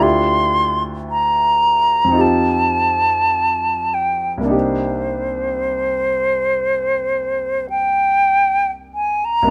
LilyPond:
<<
  \new Staff \with { instrumentName = "Flute" } { \time 4/4 \key c \dorian \tempo 4 = 50 c'''4 bes''4 a''4. g''16 r16 | c''2~ c''8 g''4 aes''16 bes''16 | }
  \new Staff \with { instrumentName = "Grand piano" } { \time 4/4 \key c \dorian <d, d' e' f' g'>2 <f, c' ees' f' g'>2 | <c, bes d' ees' g'>1 | }
>>